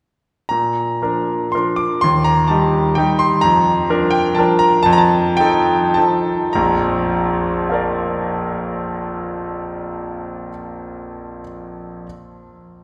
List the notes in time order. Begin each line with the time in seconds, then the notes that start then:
0.49 A#2 A#5
1.02 F3 D4 A#4
1.52 F3 D4 A#4 C6
1.76 D6
2.01 D#2 C6
2.24 A#5
2.48 G3 D#4 G4 A5
2.95 G3 D#4 G4 G5
3.19 C6
3.41 F2 A#5
3.90 F3 D4 A#4
4.11 G5
4.35 F3 D4 A#4 A5
4.59 A#5
4.83 F2 A5
4.93 A#5
4.98 A5
5.37 F3 D#4 A4 G5
5.94 F3 D#4 A4 A5
6.53 A#1 F2 A#5
7.69 F4 A#4
7.74 D5